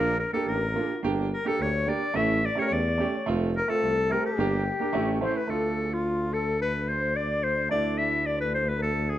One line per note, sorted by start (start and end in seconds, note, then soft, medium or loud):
0.00 0.25 A#1 medium
0.00 0.12 A#3 medium
0.00 0.13 D4 medium
0.00 0.14 F4 medium
0.00 0.18 A#4 medium
0.00 0.19 A#4 loud
0.19 0.33 A#4 medium
0.33 0.55 A#3 medium
0.33 0.55 D4 medium
0.33 0.56 G4 medium
0.33 0.50 A4 medium
0.33 0.47 A4 medium
0.47 0.81 A1 medium
0.47 1.00 A#4 medium
0.47 1.04 A#4 medium
0.75 0.89 A#3 medium
0.75 0.90 D4 medium
0.75 0.90 F4 medium
1.03 1.37 G1 medium
1.03 1.25 A#3 medium
1.03 1.25 D4 medium
1.03 1.25 G4 medium
1.33 1.46 A#4 medium
1.33 1.49 A#4 medium
1.45 1.66 A#3 medium
1.45 1.67 D4 medium
1.45 1.67 G4 medium
1.45 1.63 A4 medium
1.60 1.93 D2 medium
1.60 1.89 C#5 medium
1.60 1.91 C#5 medium
1.86 2.01 A#3 medium
1.86 2.02 D4 medium
1.86 2.02 G4 medium
1.86 2.17 D5 medium
1.86 2.18 D5 medium
2.14 2.49 A1 medium
2.14 2.36 A3 medium
2.14 2.36 C#4 medium
2.14 2.43 E4 medium
2.14 2.37 E4 medium
2.14 2.47 E5 loud
2.44 2.57 D5 medium
2.44 2.61 D5 medium
2.55 2.77 A3 medium
2.55 2.78 C#4 medium
2.55 2.78 G4 medium
2.55 2.63 C#5 medium
2.59 2.67 A#4 medium
2.59 2.63 C#5 medium
2.59 2.68 D5 soft
2.65 2.74 C#5 medium
2.65 2.75 C#5 medium
2.71 3.05 E2 medium
2.71 3.28 D5 medium
2.71 3.10 D5 medium
2.98 3.13 A3 medium
2.98 3.13 C#4 medium
2.98 3.14 G4 medium
3.11 3.17 D5 soft
3.15 3.28 C#5 medium
3.26 3.61 F1 loud
3.26 3.48 A3 medium
3.26 3.48 C4 medium
3.26 3.49 F4 medium
3.57 3.70 A#4 medium
3.57 3.73 A#4 medium
3.68 3.89 A3 medium
3.68 3.90 C4 medium
3.68 3.90 F4 medium
3.68 4.13 A4 loud
3.68 4.14 A4 medium
3.83 4.16 C2 medium
4.10 4.24 A3 medium
4.10 4.25 C4 medium
4.10 4.26 G4 medium
4.10 4.25 A#4 medium
4.10 4.27 A#4 medium
4.25 5.21 G4 medium
4.25 5.18 G4 medium
4.38 4.71 G1 loud
4.38 4.59 A#3 medium
4.38 4.60 D4 medium
4.38 4.60 G4 medium
4.80 4.94 A#3 medium
4.80 4.94 D4 medium
4.80 4.95 G4 medium
4.93 5.27 A1 medium
4.93 5.16 A3 medium
4.93 5.16 C#4 medium
4.93 5.17 E4 medium
5.21 5.35 A3 medium
5.21 5.36 C#4 medium
5.21 5.36 E4 medium
5.21 5.37 C5 medium
5.21 5.39 C5 medium
5.35 5.50 B4 medium
5.35 5.51 B4 medium
5.47 7.68 D2 medium
5.47 7.66 A3 medium
5.47 7.67 D4 soft
5.47 7.68 F4 medium
5.47 5.83 A4 medium
5.47 5.95 A4 medium
5.83 5.93 G#4 soft
5.91 6.31 F4 medium
5.91 6.35 F4 medium
6.32 6.58 A4 medium
6.32 6.61 A4 medium
6.61 6.89 B4 medium
6.61 6.90 B4 medium
6.88 7.16 C5 medium
6.88 7.18 C5 medium
7.15 7.45 D5 medium
7.44 7.70 C5 medium
7.69 9.19 D2 medium
7.69 9.19 A3 medium
7.69 9.19 D4 medium
7.69 9.19 E4 medium
7.69 7.97 D5 medium
7.69 8.00 D5 loud
7.98 8.25 E4 medium
7.98 8.28 E5 medium
8.26 8.42 D5 medium
8.26 8.41 D5 medium
8.40 8.56 B4 medium
8.40 8.54 B4 medium
8.54 8.70 C5 medium
8.68 8.83 B4 medium
8.68 8.81 B4 medium
8.82 9.11 A4 medium
9.10 9.19 G#4 medium